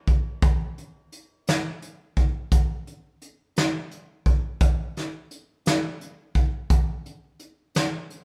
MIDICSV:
0, 0, Header, 1, 2, 480
1, 0, Start_track
1, 0, Tempo, 697674
1, 294, Time_signature, 6, 3, 24, 8
1, 5669, End_track
2, 0, Start_track
2, 0, Title_t, "Drums"
2, 49, Note_on_c, 9, 42, 44
2, 52, Note_on_c, 9, 36, 81
2, 118, Note_off_c, 9, 42, 0
2, 121, Note_off_c, 9, 36, 0
2, 290, Note_on_c, 9, 42, 83
2, 292, Note_on_c, 9, 36, 115
2, 358, Note_off_c, 9, 42, 0
2, 361, Note_off_c, 9, 36, 0
2, 536, Note_on_c, 9, 42, 41
2, 604, Note_off_c, 9, 42, 0
2, 772, Note_on_c, 9, 42, 49
2, 841, Note_off_c, 9, 42, 0
2, 1013, Note_on_c, 9, 42, 80
2, 1023, Note_on_c, 9, 38, 87
2, 1082, Note_off_c, 9, 42, 0
2, 1092, Note_off_c, 9, 38, 0
2, 1253, Note_on_c, 9, 42, 47
2, 1322, Note_off_c, 9, 42, 0
2, 1490, Note_on_c, 9, 42, 49
2, 1492, Note_on_c, 9, 36, 77
2, 1559, Note_off_c, 9, 42, 0
2, 1561, Note_off_c, 9, 36, 0
2, 1731, Note_on_c, 9, 42, 89
2, 1732, Note_on_c, 9, 36, 104
2, 1800, Note_off_c, 9, 42, 0
2, 1801, Note_off_c, 9, 36, 0
2, 1975, Note_on_c, 9, 42, 42
2, 2044, Note_off_c, 9, 42, 0
2, 2213, Note_on_c, 9, 42, 47
2, 2281, Note_off_c, 9, 42, 0
2, 2452, Note_on_c, 9, 42, 79
2, 2461, Note_on_c, 9, 38, 95
2, 2521, Note_off_c, 9, 42, 0
2, 2530, Note_off_c, 9, 38, 0
2, 2691, Note_on_c, 9, 42, 47
2, 2760, Note_off_c, 9, 42, 0
2, 2929, Note_on_c, 9, 42, 47
2, 2931, Note_on_c, 9, 36, 83
2, 2997, Note_off_c, 9, 42, 0
2, 3000, Note_off_c, 9, 36, 0
2, 3168, Note_on_c, 9, 42, 79
2, 3171, Note_on_c, 9, 36, 114
2, 3237, Note_off_c, 9, 42, 0
2, 3240, Note_off_c, 9, 36, 0
2, 3417, Note_on_c, 9, 42, 42
2, 3421, Note_on_c, 9, 38, 30
2, 3485, Note_off_c, 9, 42, 0
2, 3490, Note_off_c, 9, 38, 0
2, 3652, Note_on_c, 9, 42, 50
2, 3721, Note_off_c, 9, 42, 0
2, 3892, Note_on_c, 9, 42, 78
2, 3902, Note_on_c, 9, 38, 98
2, 3961, Note_off_c, 9, 42, 0
2, 3971, Note_off_c, 9, 38, 0
2, 4134, Note_on_c, 9, 42, 46
2, 4203, Note_off_c, 9, 42, 0
2, 4367, Note_on_c, 9, 42, 47
2, 4370, Note_on_c, 9, 36, 82
2, 4436, Note_off_c, 9, 42, 0
2, 4439, Note_off_c, 9, 36, 0
2, 4609, Note_on_c, 9, 42, 85
2, 4611, Note_on_c, 9, 36, 110
2, 4677, Note_off_c, 9, 42, 0
2, 4680, Note_off_c, 9, 36, 0
2, 4855, Note_on_c, 9, 42, 41
2, 4924, Note_off_c, 9, 42, 0
2, 5088, Note_on_c, 9, 42, 46
2, 5156, Note_off_c, 9, 42, 0
2, 5330, Note_on_c, 9, 42, 81
2, 5340, Note_on_c, 9, 38, 94
2, 5399, Note_off_c, 9, 42, 0
2, 5409, Note_off_c, 9, 38, 0
2, 5573, Note_on_c, 9, 42, 43
2, 5642, Note_off_c, 9, 42, 0
2, 5669, End_track
0, 0, End_of_file